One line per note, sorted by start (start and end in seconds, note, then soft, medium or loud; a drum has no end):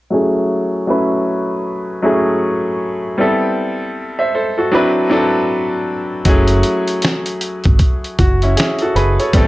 0.10 0.60 F#3 medium
0.10 0.60 A3 medium
0.10 0.61 C#4 medium
0.10 0.61 E4 medium
0.10 0.61 G#4 medium
0.87 1.60 F#3 medium
0.87 1.60 A3 medium
0.87 1.60 C#4 medium
0.87 1.61 E4 medium
0.87 1.61 B4 medium
2.02 2.75 F#3 medium
2.02 2.76 A3 medium
2.02 2.76 C#4 medium
2.02 2.76 E4 medium
2.02 2.77 G#4 medium
3.18 3.67 G3 medium
3.18 3.68 B3 medium
3.18 3.68 C4 medium
3.18 3.69 E4 medium
3.18 3.58 A4 medium
4.19 4.33 C5 soft
4.19 4.33 E5 medium
4.35 4.56 A4 medium
4.35 4.56 C5 medium
4.58 4.94 F#4 soft
4.58 4.94 A4 medium
4.71 5.04 F#3 medium
4.71 5.04 C4 medium
4.71 5.05 D4 medium
4.71 5.05 E4 medium
4.71 5.05 B4 medium
5.09 5.82 F#3 medium
5.09 5.83 C4 medium
5.09 5.83 D4 medium
5.09 5.84 E4 medium
5.09 5.84 A4 medium
6.25 6.62 F#1 medium
6.25 7.25 F#3 medium
6.25 7.25 A3 medium
6.25 7.26 C#4 medium
6.25 7.26 E4 medium
6.25 7.26 G#4 medium
6.25 kick medium
6.25 closed hi-hat medium
6.48 closed hi-hat medium
6.63 closed hi-hat medium
6.88 closed hi-hat soft
7.02 finger snap medium
7.02 snare loud
7.02 closed hi-hat medium
7.26 closed hi-hat medium
7.41 closed hi-hat medium
7.64 7.79 G#1 medium
7.64 kick medium
7.64 closed hi-hat soft
7.79 kick medium
7.79 closed hi-hat medium
8.04 closed hi-hat soft
8.19 8.55 F#1 medium
8.19 8.41 F#4 medium
8.19 kick medium
8.19 closed hi-hat medium
8.42 8.57 C#4 soft
8.42 8.56 E4 medium
8.42 closed hi-hat soft
8.57 8.79 E4 medium
8.57 8.78 G#4 medium
8.57 finger snap medium
8.57 snare medium
8.57 closed hi-hat medium
8.79 8.96 F#4 medium
8.79 8.95 A4 medium
8.79 closed hi-hat soft
8.95 9.17 F#1 medium
8.95 9.18 G#4 medium
8.95 9.17 B4 medium
8.95 closed hi-hat medium
9.20 9.35 A4 soft
9.20 9.47 C#5 soft
9.20 closed hi-hat soft
9.33 9.47 A1 medium
9.33 9.47 G3 medium
9.33 9.47 B3 medium
9.33 9.47 C4 medium
9.33 9.47 E4 medium
9.33 9.47 A4 medium
9.33 kick medium
9.33 closed hi-hat medium